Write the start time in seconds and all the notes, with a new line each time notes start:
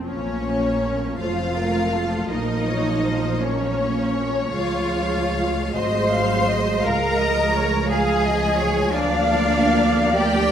0.06 A#1 F3 A#3 C#4 C#5
1.20 F1 A3 F4 C5 F5
1.59 A#4
1.95 A4
2.30 A#1 A#3 D#4 A#4 D#5
2.68 C#5
3.06 C5
3.43 C#4 C#5
4.54 C#2 F3 G#3 F4 F5
5.74 G#1 F#3 C5 D#5 C6
6.12 F5
6.48 D#5
6.83 C#2 F3 A#4 F5 A#5
7.18 D#5
7.54 C#5
7.89 G#4 F5 G#5
8.25 D#5
8.60 C#5
8.94 D2 A#3 D4 D5 F5
10.14 G4 D5 G5